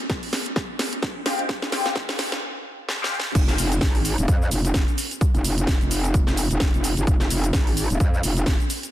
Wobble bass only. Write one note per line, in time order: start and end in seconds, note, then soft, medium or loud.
3.35 3.57 F1 loud
3.58 3.80 F1 loud
3.82 4.16 G#1 loud
4.18 4.27 D#1 loud
4.28 4.50 F2 loud
4.51 4.86 F1 loud
5.34 5.79 F1 loud
5.81 6.25 F1 loud
6.27 6.49 F1 loud
6.51 6.72 F1 medium
6.74 6.95 F1 medium
6.97 7.06 G1 medium
7.07 7.29 F1 loud
7.30 7.52 F1 loud
7.54 7.88 G#1 loud
7.90 7.99 D#1 loud
8.00 8.22 F2 loud
8.23 8.58 F1 loud